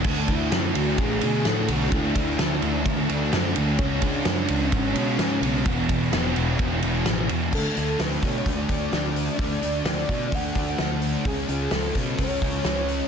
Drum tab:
CC |x-------|--------|--------|--------|
RD |-xxxxxxx|xxxxxxxx|xxxxxxxx|xxxxxxxx|
HH |--------|--------|--------|--------|
SD |--o---o-|--o---o-|--o---o-|--o---o-|
BD |oo--o---|oo--o---|oo--o---|oo--o---|

CC |x-------|--------|--------|
RD |--------|--------|--------|
HH |-ooooooo|oooooooo|oooooooo|
SD |--o---o-|--o---o-|--o---o-|
BD |o--ooo--|o--ooo--|o--ooo--|